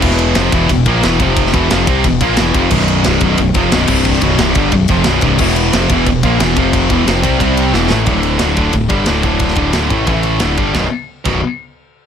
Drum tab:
CC |x---------------|----------------|x-------------x-|----------------|
RD |--x-x-x-x-x-x-x-|x-x-x-x-x-x-x-x-|--x-x-x-x-x-x---|--x-x-x-x-x-x-x-|
SD |-o--o-------o---|-o--o-------o---|-o--o-------o---|-o--o-------o---|
BD |o-----o-o-o---o-|o-o---o-o-o---o-|o-----o-o-o---o-|o-o---o-o-o---o-|

CC |x---------------|----------------|----------------|----------------|
RD |--x-x-x-x-x-x-x-|x-x-x-x-x-x-----|x-x-x-x-x-x-x-x-|x-x-x-x-x-x-x-x-|
SD |-o--o-------o---|----o-------o-o-|----o-------o---|-o--o-------o---|
BD |o-----o-o-o---o-|o-o---o-o-------|o-----o-o-o---o-|o-o---o-o-----o-|

CC |------x---------|
RD |----------------|
SD |o---------------|
BD |o-----o---------|